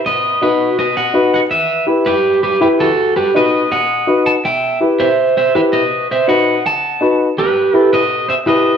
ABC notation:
X:1
M:4/4
L:1/8
Q:1/4=164
K:Em
V:1 name="Clean electric guitar"
[B^d]2 [FB]2 [Bd] [df]2 [df] | [Be]2 z [GB]2 [GB] [GB] [FA]- | [FA] [GB] [B^d]2 [df]3 [fa] | [eg]2 z [ce]2 [ce] [Be] [B^d]- |
[B^d] [ce] [df]2 [fa]3 z | [GB]3 [B^d]2 [ce] [Bd]2 |]
V:2 name="Upright piano"
z2 [^DFB] z3 [DFB] z | z2 [EGB] z3 [EGB] z | z2 [^DFB] z3 [DFB] z | z2 [EGB] z3 [EGB] z |
z2 [^DFB] z3 [DFB] z | z2 [EGB] z3 [EGB] z |]